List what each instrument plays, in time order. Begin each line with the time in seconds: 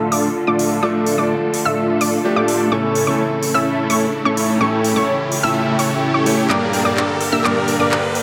Already playing: string section D3 A3 F4 A4, grand piano F3 A3 D4 A4, riser
0.12 supersaw synth A3 D4 F4 A4 D5, synth pluck D6, open hi-hat
0.47 supersaw synth A3 D4 F4 A4 D5, synth pluck D6
0.59 open hi-hat
0.82 grand piano F3 A3 D4 A4, supersaw synth A3 D4 F4 A4 D5, synth pluck D6
1.06 open hi-hat
1.17 grand piano F3 A3 D4 D5, supersaw synth A3 D4 F4 A4 D5, synth pluck D6
1.54 open hi-hat
1.65 supersaw synth A3 D4 F4 A4 E5, synth pluck E6
2.01 supersaw synth A3 D4 F4 A4 D5, synth pluck D6, open hi-hat
2.24 grand piano F3 A3 D4 G4
2.36 supersaw synth A3 D4 F4 A4 D5, synth pluck D6
2.48 open hi-hat
2.71 grand piano A2 E3 A3 C#4 A4, string section C#3 E4, supersaw synth A3 C#4 E4 A4 C#5, synth pluck C#6
2.95 open hi-hat
3.06 grand piano A2 E3 A3 C#4 A4, supersaw synth A3 C#4 E4 A4 C#5, synth pluck C#6
3.43 open hi-hat
3.54 supersaw synth A3 C#4 E4 A4 E5, synth pluck E6
3.90 supersaw synth A3 C#4 E4 A4 C#5, synth pluck C#6, open hi-hat
4.25 supersaw synth A3 C#4 E4 A4 C#5, synth pluck C#6
4.37 open hi-hat
4.60 grand piano A2 E3 A3 C#4 A4, supersaw synth A3 C#4 E4 A4 C#5, string section G4, synth pluck C#6
4.84 open hi-hat
4.95 grand piano A2 E3 A3 C#4 C#5, supersaw synth A3 C#4 E4 A4 C#5, synth pluck C#6
5.32 open hi-hat
5.43 supersaw synth A3 C#4 E4 A4 E5, synth pluck E6
5.79 supersaw synth A3 C#4 E4 A4 C#5, synth pluck C#6, open hi-hat
6.14 supersaw synth A3 C#4 E4 A4 C#5, synth pluck C#6
6.26 grand piano E3 A3 C#4 C#5, open hi-hat
6.49 grand piano G2 G3 A#3 D4 A#4, string section D3 A#3 A#4, supersaw synth A#3 D4 G4 A#4 D5, synth pluck D6, clap
6.73 open hi-hat
6.84 grand piano G2 G3 A#3 D4 A#4, supersaw synth A#3 D4 G4 A#4 D5, synth pluck D6
6.97 clap
7.21 open hi-hat
7.32 supersaw synth A#3 D4 G4 A#4 E5, synth pluck E6
7.44 grand piano G2 G3 A#3 D4 A#4, supersaw synth A#3 D4 G4 A#4 D5, synth pluck D6, clap
7.68 open hi-hat
7.78 grand piano G2 G3 A#3 D4 A#4, supersaw synth A#3 D4 G4 A#4 D5, synth pluck D6
7.92 clap
8.15 open hi-hat